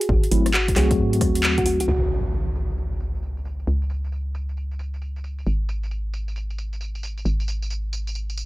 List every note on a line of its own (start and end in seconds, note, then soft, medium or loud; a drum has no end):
0.00 0.24 G#4 medium
0.00 closed hi-hat medium
0.09 0.28 G#1 medium
0.09 kick loud
0.24 closed hi-hat soft
0.32 0.73 G#1 medium
0.32 0.48 F#3 medium
0.32 0.48 A3 medium
0.32 0.48 C4 medium
0.32 0.48 E4 medium
0.32 open hi-hat loud
0.46 cross-stick medium
0.46 closed hi-hat medium
0.54 0.68 F#4 medium
0.54 clap loud
0.68 kick medium
0.68 closed hi-hat medium
0.76 1.00 C2 medium
0.76 1.87 F#3 medium
0.76 1.87 A3 medium
0.76 1.87 C4 medium
0.76 1.87 F#4 loud
0.76 0.91 G#4 medium
0.76 cross-stick medium
0.76 clap medium
0.76 open hi-hat loud
0.91 kick loud
0.91 closed hi-hat medium
0.99 1.23 G#2 loud
1.13 closed hi-hat medium
1.21 1.82 D#2 medium
1.21 kick loud
1.21 cross-stick medium
1.21 open hi-hat loud
1.35 closed hi-hat medium
1.43 clap loud
1.58 1.63 F#4 medium
1.58 kick medium
1.58 closed hi-hat soft
1.66 1.75 F#4 medium
1.66 open hi-hat loud
1.80 1.86 C2 medium
1.80 1.86 F#4 medium
1.80 closed hi-hat medium
1.88 3.66 C#2 medium
1.88 1.98 F#4 medium
1.88 impact medium
2.11 tambourine medium
2.25 tambourine soft
2.33 tambourine soft
2.56 tambourine medium
2.70 tambourine soft
2.78 tambourine soft
2.92 tambourine soft
3.00 tambourine medium
3.15 tambourine soft
3.23 tambourine soft
3.37 tambourine soft
3.45 tambourine medium
3.60 tambourine soft
3.67 5.45 C#2 medium
3.67 tambourine soft
3.82 tambourine soft
3.90 tambourine medium
4.04 tambourine soft
4.12 tambourine soft
4.35 tambourine medium
4.49 tambourine soft
4.57 tambourine soft
4.71 tambourine soft
4.79 tambourine medium
4.94 tambourine soft
5.02 tambourine soft
5.16 tambourine soft
5.24 tambourine medium
5.39 tambourine soft
5.46 7.24 G#1 medium
5.46 tambourine soft
5.69 tambourine medium
5.83 tambourine soft
5.91 tambourine soft
6.14 tambourine medium
6.28 tambourine soft
6.36 tambourine soft
6.50 tambourine soft
6.58 tambourine medium
6.73 tambourine soft
6.81 tambourine soft
6.95 tambourine soft
7.03 tambourine medium
7.18 tambourine soft
7.25 8.45 G#1 medium
7.25 tambourine soft
7.40 tambourine soft
7.48 tambourine medium
7.62 tambourine soft
7.70 tambourine soft
7.93 tambourine medium
8.07 tambourine soft
8.15 tambourine soft
8.30 tambourine soft
8.37 tambourine medium